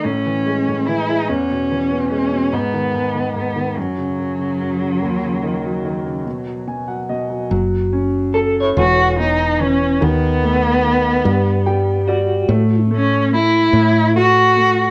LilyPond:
<<
  \new Staff \with { instrumentName = "Clean electric guitar" } { \time 6/8 \key fis \dorian \tempo 4. = 48 r2. | r2. | r2. | r4 a'16 cis''4 r8. |
r2 r8 fis'8~ | fis'8 r2 r8 | }
  \new Staff \with { instrumentName = "Cello" } { \time 6/8 \key fis \dorian cis'4 e'8 cis'4 cis'8 | b4 b8 fis4.~ | fis2 r4 | r4. fis'8 dis'8 cis'8 |
b2~ b8 r8 | r8 cis'8 e'4 fis'4 | }
  \new Staff \with { instrumentName = "Grand piano" } { \time 6/8 \key fis \dorian r2. | r2. | r2 gis''16 fis''16 dis''8 | r2. |
r2 g''8 d''8 | r2. | }
  \new Staff \with { instrumentName = "Grand piano" } { \clef bass \time 6/8 \key fis \dorian a,16 e16 gis16 a,16 e16 gis16 e,16 b,16 e16 b16 gis16 b,16 | gis,16 dis16 gis,16 dis16 gis,16 dis16 fis,16 cis16 fis,16 cis16 fis,16 cis16 | dis,16 cis16 dis16 fis16 dis16 cis16 b,16 fis16 b,16 fis16 b,16 fis16 | fis8 cis'8 a'8 e8 b8 e8 |
dis8 a8 dis8 g8 g8 g8 | a8 a8 a8 a8 a8 a8 | }
  \new Staff \with { instrumentName = "Fretless electric bass" } { \clef bass \time 6/8 \key fis \dorian r2. | r2. | r2. | fis,,4. e,,4. |
dis,4. g,4. | a,4. a,4. | }
>>